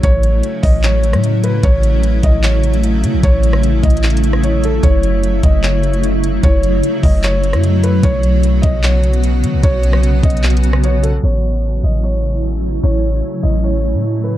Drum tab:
HH |x-----x-----x-----o-----x-----x--x--x-----x-----|x-----x-----x-----x-----x-----x--x--x-----x-----|x-----x-----x-----x-x-x-x-x-x-x-----x-----x-----|x-----x-----x-----x-----x-----x--x--x-----x-----|
CP |------------------------x-----------------------|------------------------x-----------------------|------------------------x-----------------------|------------------------x-----------------------|
SD |---------------------------------r--------------|------------------------------------------------|---------r-----------------------r--------------|------------------------------------------------|
BD |o-----------------o-----------------------------|o-----------------o-----------------------------|o-----------------o-----------------------------|o-----------------o-----------------------------|

HH |x-----x-----x-----o-----x-----x--x--x-----x-----|x-----x-----x-----x-----x-----x--x--x-----x-----|x-----x-----x-----x-x-x-x-x-x-x-----x-----x-----|------------------------------------------------|
CP |------------------------x-----------------------|------------------------x-----------------------|------------------------x-----------------------|------------------------------------------------|
SD |---------------------------------r--------------|------------------------------------------------|---------r-----------------------r--------------|------------------------------------------------|
BD |o-----------------o-----------------------------|o-----------------o-----------------------------|o-----------------o-----------------------------|------------------------------------------------|

HH |------------------------------------------------|
CP |------------------------------------------------|
SD |------------------------------------------------|
BD |------------------------------------------------|